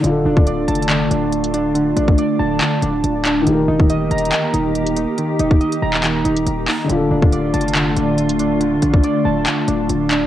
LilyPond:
<<
  \new Staff \with { instrumentName = "Grand piano" } { \time 4/4 \key d \phrygian \tempo 4 = 140 <d d' f' a'>1~ | <d d' f' a'>1 | <ees ees' g' bes'>1~ | <ees ees' g' bes'>1 |
<d d' f' a'>1~ | <d d' f' a'>1 | }
  \new Staff \with { instrumentName = "Synth keys" } { \time 4/4 \key d \phrygian d8 d'8 d''8 a''8 d8 d'4 d'8 | d8 d'8 d''8 a''8 d8 d'4 d'8 | ees8 ees'8 ees''8 bes''8 ees8 ees'4 ees'8 | ees8 ees'8 ees''8 bes''8 ees8 ees'4 ees'8 |
d8 d'8 d''8 a''8 d8 d'4 d'8 | d8 d'8 d''8 a''8 d8 d'4 d'8 | }
  \new Staff \with { instrumentName = "Ambient pad" } { \time 4/4 \key d \phrygian <d a f'>1~ | <d a f'>1 | <ees bes g'>1~ | <ees bes g'>1 |
<d a f'>1~ | <d a f'>1 | }
  \new Staff \with { instrumentName = "808-style bass" } { \clef bass \time 4/4 \key d \phrygian d,,8 d,,4 f,,4 d,,4.~ | d,,8 a,,8 r8 d,,8 r8 d,,8 d,,4 | ees,,8 ees,,4 ees,,8 r8 ees,,4~ ees,,16 r16 | r8 ees,,8 r8 ees,,4 ees,,8 ees,,8 r8 |
d,,8 d,,4 f,,4 d,,4.~ | d,,8 a,,8 r8 d,,8 r8 d,,8 d,,4 | }
  \new DrumStaff \with { instrumentName = "Drums" } \drummode { \time 4/4 hh8. bd16 \tuplet 3/2 { hh16 r16 r16 hh16 hh16 hh16 } <hc hh>8 hh8 hh16 hh16 hh8 | hh8 hh16 bd16 hh4 <hc hh>8 hh8 hh8 <hc hh>8 | hh8. bd16 \tuplet 3/2 { hh16 r16 r16 hh16 hh16 hh16 } <hc hh>8 hh8 hh16 hh16 hh8 | hh8 hh16 bd16 hh16 hh8 hc16 <hc hh>8 hh16 hh16 hh8 <hc hho>8 |
hh8. bd16 \tuplet 3/2 { hh16 r16 r16 hh16 hh16 hh16 } <hc hh>8 hh8 hh16 hh16 hh8 | hh8 hh16 bd16 hh4 <hc hh>8 hh8 hh8 <hc hh>8 | }
>>